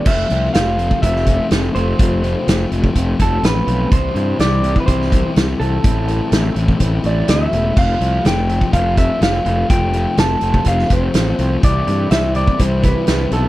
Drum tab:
CC |x---------------|----------------|----------------|----------------|
HH |--x-x-x-x-x-x-x-|x-x-x-x-x-x-x-x-|x-x-x-x-x-x-x-x-|x-x-x-x-x-x-x-x-|
SD |----o----o--o---|----o-------o---|----o----o--o---|----o-------o---|
BD |o------oo-o-----|o------oo-o-----|o------oo-o-----|o------oo-------|

CC |x---------------|----------------|----------------|
HH |--x-x-x-x-x-x-x-|x-x-x-x-x-x-x-x-|x-x-x-x-x-x-x-x-|
SD |----o-------o---|----o----o--o---|----o-------o---|
BD |o------oo-o-----|o------oo-o-----|o------oo-o-----|